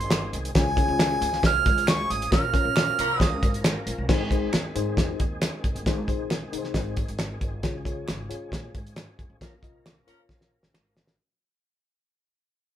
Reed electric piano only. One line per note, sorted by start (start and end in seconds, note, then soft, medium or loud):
0.55 1.18 C#3 medium
0.55 0.68 C#4 medium
0.55 0.68 F4 medium
0.55 0.68 G#4 medium
0.55 0.68 C#5 medium
0.77 1.26 C#4 medium
0.77 0.83 E4 medium
0.77 1.26 G#4 medium
0.77 1.26 C#5 medium
0.83 1.29 F4 medium
2.32 2.95 A#2 medium
2.32 2.44 C#4 medium
2.32 2.44 F4 medium
2.32 2.45 A#4 medium
2.32 2.44 C#5 medium
2.54 3.03 C#4 medium
2.54 3.03 F4 medium
2.54 3.03 A#4 medium
2.54 3.03 C#5 medium
4.09 4.71 G#2 medium
4.09 4.21 D#4 medium
4.09 4.21 G#4 medium
4.09 4.21 C5 loud
4.31 4.55 D#4 medium
4.31 4.56 G#4 medium
4.31 4.56 C5 medium
4.75 5.24 D#4 medium
4.75 5.24 G#4 medium
4.75 5.24 C5 medium
5.86 6.49 G#2 medium
5.86 5.98 D#4 medium
5.86 5.98 G#4 medium
5.86 5.98 C5 loud
6.08 6.33 D#4 medium
6.08 6.33 G#4 medium
6.08 6.33 C5 medium
6.53 7.01 D#4 medium
6.53 7.01 G#4 medium
6.53 6.58 A#4 medium
6.58 7.04 C5 medium
7.63 8.26 C#3 medium
7.63 7.75 F4 medium
7.63 7.76 G#4 medium
7.63 7.75 C#5 loud
7.85 8.10 F4 medium
7.85 8.10 G#4 medium
7.85 8.10 C#5 loud
8.29 8.79 F4 medium
8.29 8.79 G#4 medium
8.29 8.79 C#5 medium
9.41 10.04 A#2 medium
9.41 9.53 F4 medium
9.41 9.53 A#4 medium
9.41 9.53 C#5 medium
9.63 9.87 F4 medium
9.63 9.87 A#4 medium
9.63 9.88 D#5 loud
10.07 10.56 F4 medium
10.07 10.56 A#4 medium
10.07 10.56 C#5 medium